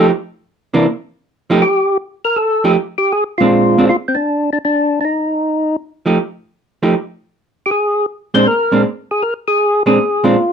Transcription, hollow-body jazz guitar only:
0, 0, Header, 1, 2, 480
1, 0, Start_track
1, 0, Tempo, 379747
1, 140, Time_signature, 4, 2, 24, 8
1, 13305, End_track
2, 0, Start_track
2, 0, Title_t, "Hollow-body jazz guitar"
2, 0, Program_c, 0, 26
2, 0, Note_on_c, 0, 67, 71
2, 128, Note_off_c, 0, 67, 0
2, 930, Note_on_c, 0, 48, 62
2, 935, Note_on_c, 0, 52, 70
2, 939, Note_on_c, 0, 58, 67
2, 945, Note_on_c, 0, 62, 73
2, 1078, Note_off_c, 0, 48, 0
2, 1080, Note_off_c, 0, 52, 0
2, 1083, Note_off_c, 0, 58, 0
2, 1085, Note_off_c, 0, 62, 0
2, 1895, Note_on_c, 0, 53, 72
2, 1905, Note_on_c, 0, 63, 79
2, 1907, Note_on_c, 0, 57, 75
2, 1916, Note_on_c, 0, 67, 75
2, 2039, Note_off_c, 0, 53, 0
2, 2044, Note_off_c, 0, 63, 0
2, 2045, Note_off_c, 0, 57, 0
2, 2050, Note_off_c, 0, 67, 0
2, 3339, Note_on_c, 0, 53, 59
2, 3344, Note_on_c, 0, 57, 56
2, 3347, Note_on_c, 0, 63, 61
2, 3347, Note_on_c, 0, 67, 71
2, 3480, Note_off_c, 0, 53, 0
2, 3482, Note_off_c, 0, 57, 0
2, 3484, Note_off_c, 0, 63, 0
2, 3484, Note_off_c, 0, 67, 0
2, 4299, Note_on_c, 0, 46, 61
2, 4304, Note_on_c, 0, 56, 66
2, 4310, Note_on_c, 0, 60, 64
2, 4317, Note_on_c, 0, 62, 60
2, 4742, Note_off_c, 0, 46, 0
2, 4744, Note_off_c, 0, 56, 0
2, 4747, Note_off_c, 0, 60, 0
2, 4751, Note_off_c, 0, 62, 0
2, 4773, Note_on_c, 0, 46, 58
2, 4783, Note_on_c, 0, 56, 58
2, 4785, Note_on_c, 0, 60, 64
2, 4791, Note_on_c, 0, 62, 71
2, 4916, Note_off_c, 0, 46, 0
2, 4922, Note_off_c, 0, 56, 0
2, 4922, Note_off_c, 0, 60, 0
2, 4925, Note_off_c, 0, 62, 0
2, 7655, Note_on_c, 0, 53, 57
2, 7663, Note_on_c, 0, 57, 55
2, 7666, Note_on_c, 0, 63, 60
2, 7673, Note_on_c, 0, 67, 56
2, 7798, Note_off_c, 0, 53, 0
2, 7802, Note_off_c, 0, 57, 0
2, 7804, Note_off_c, 0, 63, 0
2, 7807, Note_off_c, 0, 67, 0
2, 8628, Note_on_c, 0, 53, 53
2, 8628, Note_on_c, 0, 57, 60
2, 8634, Note_on_c, 0, 63, 55
2, 8637, Note_on_c, 0, 67, 58
2, 8765, Note_off_c, 0, 57, 0
2, 8766, Note_off_c, 0, 53, 0
2, 8768, Note_off_c, 0, 63, 0
2, 8770, Note_off_c, 0, 67, 0
2, 10544, Note_on_c, 0, 46, 58
2, 10545, Note_on_c, 0, 56, 64
2, 10550, Note_on_c, 0, 60, 60
2, 10554, Note_on_c, 0, 62, 65
2, 10686, Note_off_c, 0, 46, 0
2, 10686, Note_off_c, 0, 56, 0
2, 10689, Note_off_c, 0, 60, 0
2, 10690, Note_off_c, 0, 62, 0
2, 11017, Note_on_c, 0, 46, 56
2, 11025, Note_on_c, 0, 56, 60
2, 11027, Note_on_c, 0, 60, 58
2, 11033, Note_on_c, 0, 62, 61
2, 11163, Note_off_c, 0, 46, 0
2, 11167, Note_off_c, 0, 56, 0
2, 11168, Note_off_c, 0, 60, 0
2, 11170, Note_off_c, 0, 62, 0
2, 12462, Note_on_c, 0, 46, 60
2, 12465, Note_on_c, 0, 56, 58
2, 12469, Note_on_c, 0, 60, 64
2, 12476, Note_on_c, 0, 62, 67
2, 12607, Note_off_c, 0, 46, 0
2, 12608, Note_off_c, 0, 56, 0
2, 12610, Note_off_c, 0, 60, 0
2, 12614, Note_off_c, 0, 62, 0
2, 12938, Note_on_c, 0, 46, 63
2, 12941, Note_on_c, 0, 56, 66
2, 12953, Note_on_c, 0, 60, 70
2, 12954, Note_on_c, 0, 62, 68
2, 13085, Note_off_c, 0, 46, 0
2, 13087, Note_off_c, 0, 56, 0
2, 13093, Note_off_c, 0, 60, 0
2, 13094, Note_off_c, 0, 62, 0
2, 13305, End_track
0, 0, End_of_file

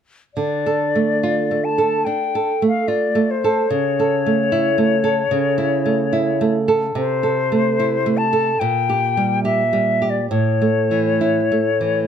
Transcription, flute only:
0, 0, Header, 1, 2, 480
1, 0, Start_track
1, 0, Key_signature, -1, "minor"
1, 0, Tempo, 875912
1, 195, Time_signature, 4, 2, 24, 8
1, 669, Tempo, 834492
1, 2109, Tempo, 802139
1, 3549, Tempo, 827586
1, 5469, Tempo, 867052
1, 5949, Tempo, 906344
1, 6882, End_track
2, 0, Start_track
2, 0, Title_t, "Flute"
2, 0, Program_c, 0, 73
2, 188, Note_on_c, 0, 74, 37
2, 912, Note_on_c, 0, 81, 40
2, 921, Note_off_c, 0, 74, 0
2, 1145, Note_on_c, 0, 79, 44
2, 1154, Note_off_c, 0, 81, 0
2, 1501, Note_off_c, 0, 79, 0
2, 1505, Note_on_c, 0, 77, 37
2, 1623, Note_on_c, 0, 74, 37
2, 1632, Note_off_c, 0, 77, 0
2, 1869, Note_on_c, 0, 72, 40
2, 1878, Note_off_c, 0, 74, 0
2, 2096, Note_on_c, 0, 73, 45
2, 2104, Note_off_c, 0, 72, 0
2, 3784, Note_off_c, 0, 73, 0
2, 4032, Note_on_c, 0, 72, 53
2, 4734, Note_on_c, 0, 81, 51
2, 4743, Note_off_c, 0, 72, 0
2, 4978, Note_on_c, 0, 79, 49
2, 4987, Note_off_c, 0, 81, 0
2, 5464, Note_off_c, 0, 79, 0
2, 5467, Note_on_c, 0, 76, 44
2, 5833, Note_on_c, 0, 74, 36
2, 5842, Note_off_c, 0, 76, 0
2, 5942, Note_off_c, 0, 74, 0
2, 5945, Note_on_c, 0, 73, 44
2, 6882, Note_off_c, 0, 73, 0
2, 6882, End_track
0, 0, End_of_file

